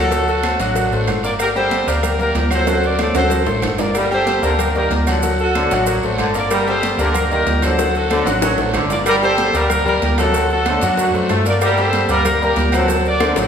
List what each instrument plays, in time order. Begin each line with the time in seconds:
Already playing: fingered electric bass D2, horn section F#4 A4
0.11 grand piano F#3 F#4 F#5, cowbell, high conga, low agogo, long guiro, maracas
0.28 horn section F#4 A4, high conga, maracas
0.43 grand piano A3 A4 C5, cowbell, high conga, low timbale, low agogo, short guiro, claves, maracas
0.59 fingered electric bass A1, grand piano F#3 F#4 F#5, horn section D4 F#4, cowbell, high conga, short guiro, maracas
0.75 cowbell, high conga, low agogo, long guiro, maracas
0.91 fingered electric bass A1, grand piano A3 A4 C5, high conga, maracas
1.07 fingered electric bass G1, cowbell, high conga, low timbale, low agogo, short guiro, claves, maracas
1.23 grand piano A#3 A#4 D5, horn section A#4 D5, high conga, short guiro, maracas
1.39 horn section G4 A#4, cowbell, high conga, low agogo, long guiro, claves, maracas
1.55 grand piano G3 G4 G5, horn section A4 C5, high conga, maracas
1.71 cowbell, high conga, low timbale, low agogo, short guiro, maracas
1.87 fingered electric bass D2, grand piano A#3 A#4 D5, horn section G4 A#4, high conga, low agogo, short guiro, maracas
2.03 cowbell, high conga, low conga, low agogo, long guiro, claves, maracas
2.19 grand piano A#3 A#4 D5, horn section G4 A#4, high conga, low conga, maracas
2.35 fingered electric bass D2, cowbell, high conga, low timbale, low agogo, short guiro, maracas
2.51 grand piano F#3 F#4 F#5, horn section A4 C5, cowbell, high conga, low agogo, short guiro, claves, maracas
2.67 grand piano F#3 F#4 F#5, cowbell, high conga, high timbale, low agogo, long guiro, maracas
2.83 horn section A#4 D5, high conga, maracas
2.98 grand piano A3 A4 C5, horn section A4 D5, cowbell, high conga, low timbale, low agogo, short guiro, claves, maracas
3.14 fingered electric bass D2, grand piano F#3 F#4 F#5, horn section A4 C5, cowbell, high conga, high timbale, short guiro, maracas
3.30 cowbell, high conga, low timbale, low agogo, long guiro, maracas
3.46 fingered electric bass A1, grand piano A3 A4 C5, high bongo, low timbale, maracas
3.62 fingered electric bass G1, cowbell, low bongo, high conga, low timbale, low agogo, short guiro, claves, maracas
3.78 grand piano A#3 A#4 D5, horn section A#4 D5, low bongo, low timbale, short guiro, maracas
3.95 trombone section G3, horn section G4 A#4, cowbell, high conga, low agogo, long guiro, claves, maracas
4.11 grand piano G3 G4 G5, horn section A4 C5, high conga, maracas
4.26 cowbell, high conga, low timbale, low agogo, short guiro, maracas
4.43 fingered electric bass D2, trombone section D3, grand piano A#3 A#4 D5, horn section G4 A#4, high conga, low agogo, short guiro, maracas
4.59 cowbell, high conga, low conga, low agogo, long guiro, claves, maracas
4.75 trombone section D#3, grand piano A#3 A#4 D5, horn section G4 A#4, high conga, maracas
4.91 fingered electric bass D2, cowbell, high conga, low timbale, low agogo, short guiro, maracas
5.07 trombone section D3, grand piano F#3 F#4 F#5, cowbell, high conga, low agogo, short guiro, claves, maracas
5.23 grand piano F#3 F#4 F#5, cowbell, high conga, low agogo, long guiro, maracas
5.39 horn section F#4 A4, high conga, maracas
5.55 trombone section D3, grand piano A3 A4 C5, cowbell, high conga, low timbale, low agogo, short guiro, claves, maracas
5.70 fingered electric bass A1, grand piano F#3 F#4 F#5, horn section D4 F#4, cowbell, high conga, short guiro, maracas
5.86 trombone section F#3, cowbell, high conga, low agogo, long guiro, maracas
6.02 fingered electric bass A1, grand piano A3 A4 C5, high conga, maracas
6.18 fingered electric bass G1, trombone section D3, cowbell, high conga, low timbale, low agogo, short guiro, claves, maracas
6.34 grand piano A#3 A#4 D5, horn section A#4 D5, high conga, short guiro, maracas
6.50 trombone section G3, horn section G4 A#4, cowbell, high conga, low agogo, long guiro, claves, maracas
6.67 grand piano G3 G4 G5, horn section A4 C5, high conga, maracas
6.82 cowbell, high conga, low timbale, low agogo, short guiro, maracas
6.98 fingered electric bass D2, trombone section D3, grand piano A#3 A#4 D5, horn section G4 A#4, high conga, low agogo, short guiro, maracas
7.14 cowbell, high conga, low conga, low agogo, long guiro, claves, maracas
7.29 trombone section D#3, grand piano A#3 A#4 D5, horn section G4 A#4, high conga, maracas
7.46 fingered electric bass D2, cowbell, high conga, low timbale, low agogo, short guiro, maracas
7.62 trombone section D3, grand piano F#3 F#4 F#5, horn section A4 C5, cowbell, high conga, low agogo, short guiro, claves, maracas
7.78 grand piano F#3 F#4 F#5, cowbell, high bongo, low agogo, long guiro, maracas
7.95 horn section F#4 A4, high conga, maracas
8.10 trombone section D3, grand piano A3 A4 C5, cowbell, high conga, low timbale, low agogo, short guiro, claves, maracas
8.26 fingered electric bass A1, grand piano F#3 F#4 F#5, horn section D4 F#4, cowbell, low bongo, high conga, high timbale, short guiro, maracas
8.42 trombone section F#3, cowbell, low bongo, high conga, high timbale, low agogo, maracas
8.58 fingered electric bass A1, grand piano A3 A4 C5, low bongo, high conga, high timbale, maracas
8.73 fingered electric bass G1, trombone section D3, cowbell, low bongo, high conga, low timbale, low agogo, short guiro, claves, maracas
8.90 grand piano A#3 A#4 D5, horn section A#4 D5, low bongo, low timbale, short guiro, maracas
9.05 trombone section G3, horn section G4 A#4, cowbell, high conga, low agogo, claves, maracas
9.22 grand piano G3 G4 G5, horn section A4 C5, high conga, maracas
9.38 cowbell, high conga, low timbale, low agogo, short guiro, maracas
9.53 fingered electric bass D2, trombone section G3, grand piano A#3 A#4 D5, horn section G4 A#4, high conga, low agogo, short guiro, maracas
9.69 cowbell, high conga, low conga, low agogo, long guiro, claves, maracas
9.85 trombone section G3, grand piano A#3 A#4 D5, horn section G4 A#4, high conga, low conga, maracas
10.02 fingered electric bass D2, cowbell, high conga, low timbale, low agogo, short guiro, maracas
10.18 trombone section C3, grand piano F#3 F#4 F#5, horn section F#4 A4, cowbell, high conga, low agogo, short guiro, claves, maracas
10.34 grand piano F#3 F#4 F#5, cowbell, high conga, low agogo, long guiro, maracas
10.50 horn section F#4 A4, high conga, maracas
10.66 trombone section D3, grand piano A3 A4 C5, cowbell, high conga, low timbale, low agogo, short guiro, claves, maracas
10.81 fingered electric bass F#2, grand piano F#3 F#4 F#5, horn section F#4, cowbell, high conga, short guiro, maracas
10.86 horn section D4
10.97 trombone section F#3, cowbell, high conga, low agogo, long guiro, maracas
11.13 fingered electric bass F#2, grand piano A3 A4 C5, high conga, maracas
11.29 fingered electric bass G2, trombone section A3, cowbell, high conga, low timbale, low agogo, short guiro, claves, maracas
11.45 grand piano A#3 A#4 D5, horn section A#4 D5, high conga, short guiro, maracas
11.61 trombone section G3, horn section G4 A#4, cowbell, high conga, low agogo, long guiro, claves, maracas
11.77 grand piano G3 G4 G5, horn section A4 C5, high conga, maracas
11.93 cowbell, high conga, low timbale, low agogo, short guiro, maracas
12.08 fingered electric bass D2, trombone section G3, grand piano A#3 A#4 D5, horn section G4 A#4, high conga, low agogo, short guiro, maracas
12.25 cowbell, high conga, low conga, low agogo, long guiro, claves, maracas
12.41 trombone section G3, grand piano A#3 A#4 D5, horn section G4 A#4, high conga, maracas
12.56 fingered electric bass D2, cowbell, high conga, low timbale, low agogo, short guiro, maracas
12.72 trombone section C3, grand piano F#3 F#4 F#5, horn section A4 C5, cowbell, high conga, low agogo, short guiro, claves, maracas
12.88 grand piano F#3 F#4 F#5, cowbell, high conga, low agogo, long guiro, maracas
13.05 horn section A#4 D5, high conga, maracas
13.20 trombone section D3, grand piano A3 A4 C5, cowbell, high bongo, high conga, low timbale, low agogo, short guiro, claves, maracas
13.36 fingered electric bass A1, grand piano F#3 F#4 F#5, horn section A4 C5, cowbell, high bongo, short guiro, maracas